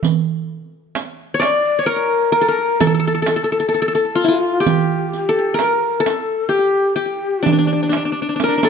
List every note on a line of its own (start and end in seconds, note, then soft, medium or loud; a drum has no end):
0.00 0.25 A4 medium
0.00 darbuka dum medium
0.04 riq medium
0.95 riq soft
0.95 darbuka tek medium
1.34 1.46 C#5 medium
1.40 1.85 D5 loud
1.40 1.90 D5 medium
1.40 riq medium
1.40 darbuka tek medium
1.79 2.81 C#5 medium
1.86 2.32 A#4 medium
1.86 2.34 A#4 medium
1.86 riq soft
2.32 2.47 A#4 medium
2.32 2.46 A#4 medium
2.41 2.54 A4 medium
2.47 2.81 A#4 medium
2.47 2.86 A#4 medium
2.80 4.35 A4 medium
2.80 2.86 A4 loud
2.80 riq medium
2.80 darbuka dum medium
2.87 2.94 A4 medium
2.94 2.99 A4 medium
3.00 3.07 A4 medium
3.07 3.14 A4 medium
3.15 3.22 A4 medium
3.22 3.28 A4 medium
3.26 3.36 A4 medium
3.26 riq medium
3.26 darbuka tek medium
3.36 3.44 A4 medium
3.44 3.52 A4 medium
3.52 3.59 A4 medium
3.60 3.68 A4 medium
3.69 3.74 A4 medium
3.73 3.81 A4 medium
3.73 riq soft
3.73 darbuka ka soft
3.82 3.88 A4 medium
3.88 3.94 A4 medium
3.95 5.12 A4 medium
3.95 riq soft
4.15 4.28 F4 medium
4.21 4.34 E4 medium
4.21 riq soft
4.28 5.63 F4 medium
4.33 4.63 F4 medium
4.60 5.86 G4 medium
4.60 4.68 A4 medium
4.66 5.63 G4 medium
4.66 riq medium
4.66 darbuka dum medium
5.13 riq soft
5.13 darbuka ka soft
5.29 5.60 A4 medium
5.54 6.06 A#4 medium
5.59 6.08 A#4 medium
5.59 riq soft
5.59 darbuka tek medium
6.00 7.17 A4 medium
6.06 6.55 A4 medium
6.06 riq medium
6.06 darbuka tek medium
6.49 6.95 G4 medium
6.53 6.98 G4 medium
6.53 darbuka ka soft
6.96 8.21 G4 medium
6.96 7.48 G4 medium
7.43 7.52 D4 medium
7.43 8.13 D4 medium
7.43 riq medium
7.43 darbuka dum medium
7.52 7.58 D4 medium
7.59 7.67 D4 medium
7.67 7.72 D4 soft
7.73 7.82 D4 soft
7.83 7.89 D4 soft
7.89 7.96 D4 soft
7.89 riq soft
7.89 darbuka tek medium
7.96 8.05 D4 soft
8.05 8.12 D4 soft
8.12 8.21 D4 soft
8.22 8.29 D4 soft
8.29 8.35 D4 soft
8.36 8.43 D4 soft
8.36 darbuka tek medium
8.40 8.48 D4 soft
8.40 8.65 A#4 medium
8.40 8.69 A#4 medium
8.40 riq medium
8.48 8.57 D4 medium
8.58 8.62 D4 soft
8.63 8.69 D4 medium
8.63 8.69 A4 medium
8.63 riq medium
8.63 darbuka ka medium